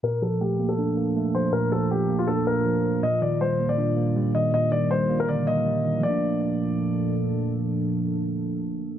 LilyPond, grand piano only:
\new Staff \with { instrumentName = "Grand piano" } { \time 4/4 \key bes \major \tempo 4 = 160 bes'8 a'8 g'8. a'4.~ a'16 c''8 | bes'8 a'8 g'8. f'16 a'8 bes'4. | ees''8 d''8 c''8. d''4.~ d''16 ees''8 | ees''8 d''8 c''8. bes'16 d''8 ees''4. |
d''2. r4 | r1 | }